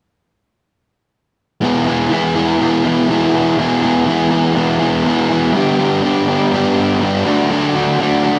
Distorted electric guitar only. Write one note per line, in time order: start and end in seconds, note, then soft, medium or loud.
1.61 2.09 E3 medium
1.61 1.87 G#3 medium
1.61 1.86 B3 medium
1.61 1.85 E4 medium
1.86 2.10 G#3 soft
1.86 2.10 B3 medium
1.86 2.11 E4 medium
2.09 2.58 E3 medium
2.09 2.36 G#3 medium
2.09 2.35 B3 medium
2.09 2.34 E4 medium
2.34 2.58 G#3 soft
2.34 2.59 B3 medium
2.34 2.59 E4 medium
2.58 2.84 E3 medium
2.58 2.83 G#3 medium
2.58 2.84 B3 medium
2.58 2.82 E4 medium
2.84 3.07 E3 medium
2.84 3.08 G#3 medium
2.84 3.09 B3 medium
2.84 3.09 E4 medium
3.08 3.55 E3 medium
3.08 3.33 G#3 medium
3.08 3.33 B3 medium
3.08 3.31 E4 medium
3.32 3.56 G#3 medium
3.32 3.58 B3 medium
3.32 3.57 E4 medium
3.57 4.04 E3 medium
3.57 3.82 G#3 medium
3.57 3.82 B3 medium
3.57 3.80 E4 medium
3.82 4.05 G#3 soft
3.82 4.07 B3 medium
3.82 4.06 E4 medium
4.05 4.54 E3 medium
4.05 4.31 G#3 medium
4.05 4.30 B3 medium
4.05 4.29 E4 medium
4.30 4.54 G#3 medium
4.30 4.55 B3 medium
4.30 4.55 E4 medium
4.55 4.80 E3 medium
4.55 4.79 G#3 medium
4.55 4.79 B3 medium
4.55 4.78 E4 medium
4.79 5.03 E3 medium
4.79 5.04 G#3 medium
4.79 5.04 B3 medium
4.79 5.05 E4 medium
5.04 5.52 E3 medium
5.04 5.29 G#3 medium
5.04 5.29 B3 medium
5.04 5.27 E4 medium
5.29 5.53 G#3 medium
5.29 5.53 B3 medium
5.29 5.52 E4 medium
5.53 6.01 G2 medium
5.53 6.01 D3 medium
5.53 5.79 G3 medium
5.53 5.78 B3 medium
5.53 5.78 D4 medium
5.78 6.02 G3 soft
5.78 6.02 B3 medium
5.78 6.03 D4 medium
6.02 6.52 G2 medium
6.02 6.48 D3 medium
6.02 6.26 G3 medium
6.02 6.25 B3 medium
6.02 6.25 D4 medium
6.26 6.49 G3 soft
6.26 6.50 B3 medium
6.26 6.50 D4 medium
6.50 6.74 D3 medium
6.50 6.74 G3 medium
6.50 6.74 B3 medium
6.50 6.73 D4 medium
6.74 7.24 G2 medium
6.74 6.99 D3 medium
6.74 6.99 G3 medium
6.74 7.00 B3 medium
6.74 7.01 D4 medium
7.00 7.24 D3 medium
7.00 7.24 G3 medium
7.00 7.25 B3 medium
7.00 7.23 D4 medium
7.24 7.48 D3 medium
7.24 7.49 F#3 medium
7.24 7.50 A3 medium
7.24 7.50 D4 medium
7.49 7.98 D3 medium
7.49 7.74 F#3 medium
7.49 7.74 A3 medium
7.49 7.73 D4 medium
7.74 7.99 F#3 medium
7.74 7.99 A3 medium
7.74 7.99 D4 medium
7.99 8.39 D3 medium
7.99 8.24 F#3 medium
7.99 8.23 A3 medium
7.99 8.22 D4 medium
8.23 8.39 F#3 medium
8.23 8.39 A3 medium
8.23 8.39 D4 medium